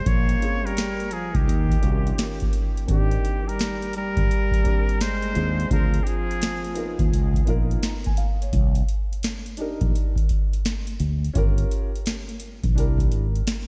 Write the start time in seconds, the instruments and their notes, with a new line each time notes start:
0.06 fretless electric bass A#1, trombone A#3, muted trumpet C#5, kick, closed hi-hat
0.29 closed hi-hat
0.39 grand piano C4 C#4 F4 G#4, closed hi-hat
0.64 trombone G3, muted trumpet A#4, closed hi-hat
0.77 snare, closed hi-hat
1.00 closed hi-hat
1.11 trombone F3, muted trumpet G#4, closed hi-hat
1.34 fretless electric bass C#2, trombone D#3, muted trumpet G4, kick, closed hi-hat
1.48 fretless electric bass D#2, closed hi-hat
1.69 kick, closed hi-hat
1.80 fretless electric bass C2, grand piano A#3 C#4 F4, closed hi-hat
1.84 grand piano F#4
1.91 grand piano G4
2.07 closed hi-hat
2.18 snare, closed hi-hat
2.40 kick, closed hi-hat
2.53 closed hi-hat
2.77 closed hi-hat
2.86 fretless electric bass G#1, grand piano A#3 C4 D4, kick, closed hi-hat
2.90 trombone D#3, grand piano G4, muted trumpet G4
3.11 closed hi-hat
3.25 closed hi-hat
3.48 trombone G3, muted trumpet A#4, closed hi-hat
3.59 snare, closed hi-hat
3.82 closed hi-hat
3.93 trombone G3, muted trumpet A#4, closed hi-hat
4.17 fretless electric bass G1, kick, closed hi-hat
4.31 closed hi-hat
4.51 kick, closed hi-hat
4.63 grand piano A#3 C4 D4, kick, closed hi-hat
4.67 grand piano G4
4.89 closed hi-hat
5.01 trombone G#3, muted trumpet C5, snare, closed hi-hat
5.22 closed hi-hat
5.33 fretless electric bass D#2, grand piano C4 D4 F4 G#4, closed hi-hat
5.60 closed hi-hat
5.68 fretless electric bass D2, trombone F3, grand piano C4 D4 F4, muted trumpet A#4, kick, closed hi-hat
5.72 grand piano G#4
5.94 closed hi-hat
6.02 trombone D#3, muted trumpet G4
6.07 trombone F3, muted trumpet G#4, closed hi-hat
6.31 closed hi-hat
6.42 snare, closed hi-hat
6.65 closed hi-hat
6.74 grand piano B3 D#4 F4 A#4, closed hi-hat
6.99 fretless electric bass D#2, kick, closed hi-hat
7.13 fretless electric bass C#2, closed hi-hat
7.34 kick, closed hi-hat
7.45 fretless electric bass A#1, grand piano B3 D#4 F4, closed hi-hat
7.49 grand piano A#4
7.71 closed hi-hat
7.83 grand piano A#5, snare, closed hi-hat
8.04 grand piano G#5, kick, closed hi-hat
8.17 grand piano F5, closed hi-hat
8.42 grand piano C#5, closed hi-hat
8.53 fretless electric bass C2, kick, closed hi-hat
8.75 closed hi-hat
8.89 closed hi-hat
9.13 closed hi-hat
9.23 snare, closed hi-hat
9.46 closed hi-hat
9.57 grand piano D4 D#4 G4, closed hi-hat
9.61 grand piano A#4
9.81 fretless electric bass A#1, kick, closed hi-hat
9.95 closed hi-hat
10.16 kick, closed hi-hat
10.29 kick, closed hi-hat
10.53 closed hi-hat
10.65 snare, closed hi-hat
10.87 closed hi-hat
11.00 fretless electric bass D2, closed hi-hat
11.25 closed hi-hat
11.33 fretless electric bass G1, grand piano C#4 F4 G4, kick, closed hi-hat
11.38 grand piano A#4
11.58 closed hi-hat
11.71 closed hi-hat
11.96 closed hi-hat
12.06 snare, closed hi-hat
12.29 closed hi-hat
12.40 closed hi-hat
12.64 fretless electric bass A#1, kick, closed hi-hat
12.75 fretless electric bass C2, grand piano D4 E4 G4, closed hi-hat
12.79 grand piano A#4
12.98 kick, closed hi-hat
13.12 fretless electric bass G#1, closed hi-hat
13.36 closed hi-hat
13.47 snare, closed hi-hat